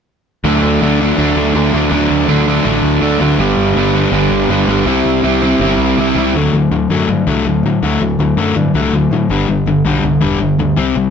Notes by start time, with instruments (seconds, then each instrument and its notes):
0.44 picked electric bass D2, overdriven electric guitar D3 F#3 A3 D4
0.63 picked electric bass D2
0.82 picked electric bass D2, overdriven electric guitar D3 F#3 A3 D4
1.00 overdriven electric guitar D3 F#3 A3 D4
1.17 picked electric bass D2, overdriven electric guitar D3 F#3 A3 D4
1.36 picked electric bass D2
1.54 picked electric bass D2, overdriven electric guitar D3 F#3 A3 D4
1.72 picked electric bass D2, overdriven electric guitar D3 F#3 A3 D4
1.90 picked electric bass D2, overdriven electric guitar D3 F#3 A3 D4
2.10 picked electric bass D2
2.27 picked electric bass D2, overdriven electric guitar D3 F#3 A3 D4
2.46 overdriven electric guitar D3 F#3 A3 D4
2.63 picked electric bass A1, overdriven electric guitar D3 F#3 A3 D4
2.83 picked electric bass D2
3.00 picked electric bass D2, overdriven electric guitar D3 F#3 A3 D4
3.20 picked electric bass D2, overdriven electric guitar D3 F#3 A3 D4
3.38 picked electric bass G1, overdriven electric guitar G2 D3 G3 B3 D4
3.57 picked electric bass G1
3.74 picked electric bass G1, overdriven electric guitar G2 D3 G3 B3 D4
3.92 overdriven electric guitar G2 D3 G3 B3 D4
4.11 picked electric bass G1, overdriven electric guitar G2 D3 G3 B3 D4
4.30 picked electric bass G1
4.48 picked electric bass G1, overdriven electric guitar G2 D3 G3 B3 D4
4.66 picked electric bass G1, overdriven electric guitar G2 D3 G3 B3 D4
4.86 picked electric bass C2, overdriven electric guitar C3 G3 C4 E4
5.05 picked electric bass C2
5.23 picked electric bass C2, overdriven electric guitar C3 G3 C4 E4
5.42 overdriven electric guitar C3 G3 C4 E4
5.59 picked electric bass G1, overdriven electric guitar C3 G3 C4 E4
5.78 picked electric bass C2
5.97 picked electric bass C2, overdriven electric guitar C3 G3 C4 E4
6.15 picked electric bass C2, overdriven electric guitar C3 G3 C4 E4
6.34 picked electric bass D2, overdriven electric guitar D3 F#3 A3
6.53 picked electric bass D2, overdriven electric guitar D3 F#3
6.71 picked electric bass D2, overdriven electric guitar D3 F#3
6.90 picked electric bass F#2, overdriven electric guitar D3 F#3 A3
7.09 picked electric bass G2, overdriven electric guitar D3 F#3
7.27 picked electric bass C2, overdriven electric guitar D3 F#3 A3
7.45 picked electric bass D2, overdriven electric guitar D3 F#3
7.63 picked electric bass A2, overdriven electric guitar D3 F#3
7.82 picked electric bass D2, overdriven electric guitar D3 F#3 A3
8.00 picked electric bass D2, overdriven electric guitar D3 F#3
8.19 picked electric bass D2, overdriven electric guitar D3 F#3
8.37 picked electric bass F#2, overdriven electric guitar D3 F#3 A3
8.56 picked electric bass G2, overdriven electric guitar D3 F#3
8.74 picked electric bass C2, overdriven electric guitar D3 F#3 A3
8.92 picked electric bass D2, overdriven electric guitar D3 F#3
9.11 picked electric bass A2, overdriven electric guitar D3 F#3
9.29 picked electric bass G1, overdriven electric guitar G2 D3 G3
9.48 picked electric bass G1, overdriven electric guitar G2 D3
9.66 picked electric bass G1, overdriven electric guitar G2 D3
9.85 picked electric bass B1, overdriven electric guitar G2 D3 G3
10.03 picked electric bass C2, overdriven electric guitar G2 D3
10.21 picked electric bass E1, overdriven electric guitar G2 D3 G3
10.40 picked electric bass G1, overdriven electric guitar G2 D3
10.59 picked electric bass D2, overdriven electric guitar G2 D3
10.77 picked electric bass C2, overdriven electric guitar C3 G3 C4
10.96 picked electric bass C2, overdriven electric guitar C3 G3